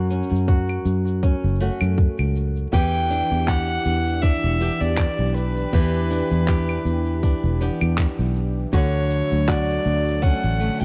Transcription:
Already playing: F#2 A3 C#4 F#4
0.10 C#4, shaker
0.23 shaker
0.31 F#2
0.35 shaker
0.48 F#4, kick, shaker
0.69 claves, shaker
0.85 F#2, shaker
1.07 shaker
1.23 C#4, kick, shaker
1.44 F#1, shaker
1.48 shaker
1.55 shaker
1.60 A3 C#4 F#4, shaker
1.81 F#2, claves, shaker
1.98 kick, shaker
2.19 C#2, claves, shaker
2.36 shaker
2.56 shaker
2.73 E2 E3 D4 G4 G5, kick, shaker
2.94 shaker
3.10 D4, shaker
3.31 E2, shaker
3.48 G4 F#5, kick, clap, shaker
3.69 shaker
3.85 E2, shaker
4.06 shaker
4.22 D4 E5, kick, shaker
4.44 E1, shaker
4.61 B3 D4 G4, shaker
4.81 E2 D5, shaker
4.98 kick, clap, claves, shaker
5.19 B1, shaker
5.35 B4, shaker
5.57 shaker
5.73 E2 E3 G4, kick, shaker
5.94 shaker
6.11 D4, shaker
6.31 E2, shaker
6.48 G4, kick, clap, shaker
6.69 claves, shaker
6.85 E2, shaker
7.06 shaker
7.23 D4, kick, shaker
7.44 E1, shaker
7.61 B3 D4 G4
7.81 E2, claves, shaker
7.98 kick, clap, shaker
8.19 B1, shaker
8.36 shaker
8.73 D2 D3 F#3 A3 F#4 C#5, kick, shaker
8.94 shaker
9.10 shaker
9.31 D2, shaker
9.48 F#4 D5, kick, clap, shaker
9.70 shaker
9.86 D2, shaker
10.08 shaker
10.22 C#4 F#5, kick, shaker
10.44 A1, shaker
10.60 A3 C#4, shaker
10.81 D2 G5

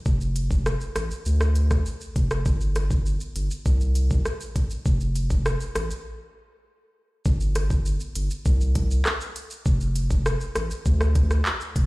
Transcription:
0.06 F1, kick, shaker
0.21 shaker
0.36 closed hi-hat, shaker
0.51 kick, shaker
0.66 cross-stick, shaker
0.81 shaker
0.96 A1, cross-stick, closed hi-hat, shaker
1.11 shaker
1.26 D2, shaker
1.41 cross-stick, shaker
1.56 closed hi-hat, shaker
1.71 kick, cross-stick, shaker
1.86 shaker
2.01 shaker
2.16 F1, kick, closed hi-hat, shaker
2.31 cross-stick, shaker
2.46 G1, kick, shaker
2.61 shaker
2.76 cross-stick, closed hi-hat, shaker
2.91 kick, shaker
3.06 shaker
3.20 shaker
3.36 G1, closed hi-hat, shaker
3.51 shaker
3.66 C2, kick, shaker
3.81 shaker
3.95 closed hi-hat, shaker
4.11 kick, shaker
4.25 cross-stick, shaker
4.41 shaker
4.56 kick, closed hi-hat, shaker
4.70 shaker
4.86 F1, kick, shaker
5.01 shaker
5.16 closed hi-hat, shaker
5.30 kick, shaker
5.46 cross-stick, shaker
5.60 shaker
5.75 A1, cross-stick, closed hi-hat, shaker
5.91 shaker
7.26 G1, kick, shaker
7.41 shaker
7.55 cross-stick, closed hi-hat, shaker
7.70 kick, shaker
7.86 shaker
8.00 shaker
8.15 G1, closed hi-hat, shaker
8.31 shaker
8.46 C2, kick, shaker
8.61 shaker
8.75 kick, closed hi-hat, shaker
8.91 shaker
9.06 cross-stick, clap, shaker
9.21 shaker
9.36 closed hi-hat, shaker
9.51 shaker
9.66 F1, kick, shaker
9.81 shaker
9.96 closed hi-hat, shaker
10.11 kick, shaker
10.26 cross-stick, shaker
10.41 shaker
10.55 A1, cross-stick, closed hi-hat, shaker
10.71 shaker
10.86 D2, kick, shaker
11.01 cross-stick, shaker
11.15 kick, closed hi-hat, shaker
11.31 cross-stick, shaker
11.46 clap, shaker
11.61 shaker
11.76 F1, kick, closed hi-hat, shaker

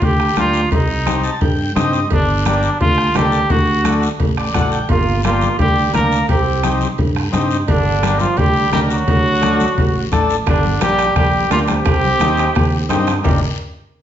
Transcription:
0.02 D2 G4, bombo low, cowbell, low conga, long guiro
0.20 bombo rim
0.36 D2 A#3 D4 F4 G4, bombo rim, high conga, short guiro
0.54 short guiro
0.71 C2 D#4, bombo low, cowbell, low conga, long guiro
1.06 C4 D#4 G4, bombo rim, high conga, short guiro
1.24 A5, short guiro
1.41 G2 G5, bombo low, cowbell, low conga, long guiro
1.75 G2 C4 D#4 G4 D#5, bombo rim, high conga, low conga, short guiro
1.93 short guiro
2.10 G1 D4, bombo low, cowbell, low conga, long guiro
2.46 A#3 D4 G4, bombo rim, high conga, short guiro
2.63 short guiro
2.80 D2 F4, bombo low, cowbell, low conga, long guiro
2.98 bombo rim
3.15 D2 A#3 D4 G4 A4, bombo rim, high conga, low conga, low timbale, short guiro
3.32 short guiro
3.50 D2 F#4, bombo low, cowbell, low conga, long guiro
3.84 A3 D4 F#4, bombo rim, high conga, short guiro
4.02 short guiro
4.20 A1, bombo low, cowbell, low conga, long guiro
4.37 D5, bombo rim
4.54 A1 A3 D4 F#4 F#5, bombo low, bombo rim, high conga, low conga, short guiro
4.72 G5, short guiro
4.89 G1 A#3 F4, bombo low, cowbell, low conga, long guiro
5.23 A#3 D4 F4 G4, bombo rim, high conga, short guiro
5.42 high conga, short guiro
5.59 D2 G3 G4, bombo low, cowbell, low conga, long guiro
5.93 D2 A#3 D4 A#4, bombo rim, high conga, low conga, short guiro
6.11 short guiro
6.28 C2 C4 G4, bombo low, cowbell, long guiro
6.63 C4 D#4 G4, bombo rim, high conga, short guiro
6.81 high conga, short guiro
6.98 G2, bombo low, cowbell, low conga, long guiro
7.16 bombo rim
7.32 G2 C4 D#4 G4, bombo rim, high conga, low conga, short guiro
7.51 short guiro
7.68 G1 D3 D4, bombo low, cowbell, low conga, long guiro
8.03 A#3 D4 G4, bombo rim, high conga, short guiro
8.20 F3 F4, high conga, short guiro
8.37 D2 G3 G4, bombo low, cowbell, low conga, long guiro
8.72 D2 G3 A#3 D4 G4 A#4, bombo rim, high conga, low conga, low timbale, short guiro
8.90 F#3 F#4, short guiro
9.07 D2, bombo low, cowbell, low conga, long guiro
9.41 A3 D4 F#4, bombo rim, high conga, short guiro
9.60 high conga, short guiro
9.78 A1, bombo low, cowbell, low conga, long guiro
10.12 A1 A3 D4 A4, bombo low, bombo rim, high conga, short guiro
10.29 short guiro
10.46 G1 D3 D4, bombo low, bombo rim, cowbell, high conga, low conga, long guiro
10.64 high conga
10.81 A#1 G3 A#3 D4 G4, bombo rim, high conga, short guiro
10.99 bombo rim, short guiro
11.16 A#1 G3 G4, bombo low, bombo rim, cowbell, high conga, low conga, long guiro
11.50 D2 A#3 D4 F4 G4, bombo rim, high conga, low timbale, short guiro
11.68 C4 G4, bombo rim, high conga, short guiro
11.85 C2, bombo low, bombo rim, cowbell, high conga, low conga, long guiro
12.04 high conga
12.19 D#2 C4 D#4 G4, bombo rim, high conga, short guiro
12.37 bombo rim, short guiro
12.55 D#2, bombo low, bombo rim, cowbell, high conga, low conga, long guiro
12.89 G2 C4 D#4 G4, bombo rim, high conga, low timbale, short guiro
13.07 bombo rim, high conga, short guiro
13.23 G1 A#3 D4 G4, bombo low, low conga, low timbale, long guiro

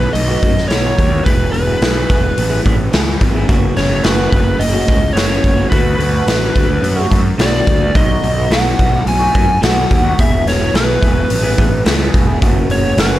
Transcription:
Already playing: B2 B4
0.00 muted clean electric guitar stroke
0.13 B1 D#5, open hi-hat
0.28 B3 D#4 F#4
0.42 F#2 F#3 B3 D#4 F#4, kick, open hi-hat
0.57 muted clean electric guitar stroke, snare
0.68 B1 B2 F#3 B3 D#4 C#5, snare, open hi-hat
0.72 F#4
0.84 B3 D#4 F#4
0.98 D#2, kick, open hi-hat
1.11 B3 D#4 F#4
1.24 E1 E2 B2 E3 B3 E4 G#4 B4, kick, open hi-hat
1.53 E1 B4, open hi-hat
1.67 E3 B3 E4 G#4
1.81 B1 E2 B2 E3 B3 E4 G#4, snare, open hi-hat
2.09 E1 E3 B3 E4 G#4, kick, open hi-hat
2.23 muted clean electric guitar stroke
2.38 A1, open hi-hat
2.50 E3 B3 E4 G#4
2.64 A1 E3 B3 E4 G#4, kick, open hi-hat
2.77 muted clean electric guitar stroke
2.91 C#2 E2 B2 E3 B3 E4 G#4, snare, open hi-hat
3.06 E3 B3 E4 G#4
3.21 G#1, kick, open hi-hat
3.33 E3 B3 E4 G#4
3.47 F#1 F#2 C#3 F#3 B3 C#4 F#4, kick, open hi-hat
3.77 F#1 C#5, snare, open hi-hat
3.89 F#3 B3 C#4 F#4
4.03 F#1 F#2 C#3 F#3 B3 C#4 F#4 B4, snare, open hi-hat
4.31 F#1 F#3 B3 C#4 F#4, kick, open hi-hat
4.46 muted clean electric guitar stroke
4.59 F#1 D#5, open hi-hat
4.72 F#3 B3 C#4 F#4
4.87 C#2 F#3 B3 C#4 F#4, kick, open hi-hat
5.01 muted clean electric guitar stroke
5.13 F#1 F#2 C#3 F#3 B3 C#4 F#4 C#5, open hi-hat
5.17 snare
5.28 F#3 B3 C#4 F#4
5.44 F#1, kick, open hi-hat
5.56 F#3 B3 C#4 F#4
5.70 D2 D3 F#3 A3 B3 F#4 B4, kick, open hi-hat
5.98 D2 B4, open hi-hat
6.12 A3 B3 F#4
6.27 A1 D3 F#3 A3 B3 F#4, snare, open hi-hat
6.54 D2 F#3 A3 B3 F#4, kick, open hi-hat
6.69 muted clean electric guitar stroke
6.82 F#2, open hi-hat
6.96 A3 B3 F#4
7.10 F#2 F#3 A3 B3 F#4, kick, open hi-hat
7.24 muted clean electric guitar stroke
7.38 B1 D3 F#3 A3 B3 F#4 D5, snare, open hi-hat
7.52 A3 B3 F#4
7.67 D2, kick, open hi-hat
7.80 A3 B3 F#4
7.94 B1 B2 F#3 B3 D#4 F#4 D#5, kick, open hi-hat
8.23 B1, open hi-hat
8.36 B3 D#4 F#4
8.49 B1 B2 F#3 B3 D#4 F#4 F#5, snare, open hi-hat
8.77 B1 F#3 B3 D#4 F#4, kick, open hi-hat
8.92 muted clean electric guitar stroke
9.06 B1 G#5, open hi-hat
9.19 B3 D#4 F#4
9.33 F#2 F#3 B3 D#4 F#4, kick, open hi-hat
9.47 muted clean electric guitar stroke
9.61 B1 B2 F#3 B3 D#4 F#4, snare, open hi-hat
9.65 F#5
9.75 B3 D#4 F#4
9.91 D#2, kick, open hi-hat
10.03 B3 D#4 F#4
10.18 E1 E2 B2 E3 B3 E4 G#4 E5, kick, open hi-hat
10.46 E1 C#5, snare, open hi-hat
10.59 E3 B3 E4 G#4
10.73 B1 E2 B2 E3 B3 E4 G#4 B4, snare, open hi-hat
11.01 E1 E3 B3 E4 G#4, kick, open hi-hat
11.15 muted clean electric guitar stroke
11.30 A1, open hi-hat
11.42 E3 B3 E4 G#4
11.56 A1 E3 B3 E4 G#4, kick, open hi-hat
11.71 muted clean electric guitar stroke
11.85 C#2 E2 B2 E3 B3 E4 G#4, snare, open hi-hat
11.99 E3 B3 E4 G#4
12.14 E1, kick, open hi-hat
12.27 E3 B3 E4 G#4
12.40 F#1 F#2 C#3 F#3 B3 C#4 F#4, kick, open hi-hat
12.69 F#1 C#5, open hi-hat
12.82 F#3 B3 C#4 F#4
12.96 F#1 F#2 C#3 F#3 B3 C#4 F#4 B4, snare, open hi-hat

